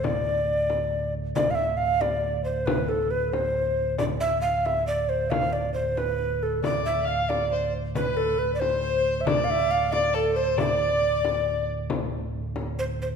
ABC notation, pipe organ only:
X:1
M:6/8
L:1/8
Q:3/8=91
K:Ddor
V:1 name="Pipe organ" clef=bass
[D,,A,,]6 | [D,,A,,]6- | [D,,A,,]6- | [D,,A,,]6- |
[D,,A,,]6 | [D,,A,,]6- | [D,,A,,]6- | [D,,A,,]6- |
[D,,A,,]6 | [D,,A,,]6 |]